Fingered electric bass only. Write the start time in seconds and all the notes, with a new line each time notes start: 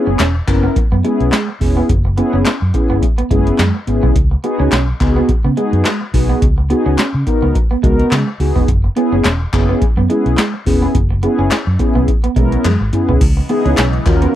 0.07 F#1
0.20 E1
0.48 F#1
0.76 muted fingered electric bass stroke
0.92 F#2
1.20 B1
1.61 E1
1.89 F#1
2.34 F#1
2.46 muted fingered electric bass stroke
2.62 F#2
2.90 F#1
3.31 F#1
3.59 F#2
3.88 G#1
4.03 B1
4.16 C#2
4.60 C#2
4.72 B1
5.01 C#2
5.29 muted fingered electric bass stroke
5.45 C#3
5.73 F#2
6.14 B1
6.42 C#2
6.86 C#2
7.14 C#3
7.43 C#2
7.84 C#2
8.12 C#3
8.40 C#2
8.56 E1
8.68 F#1
9.12 F#1
9.25 E1
9.53 F#1
9.82 muted fingered electric bass stroke
9.97 F#2
10.26 B1
10.67 E1
10.95 F#1
11.39 F#1
11.67 F#2
11.95 B1
12.36 B1
12.65 F#2
12.81 G#1
13.09 B1
13.21 C#2
13.66 C#2
13.78 B1
14.06 D#2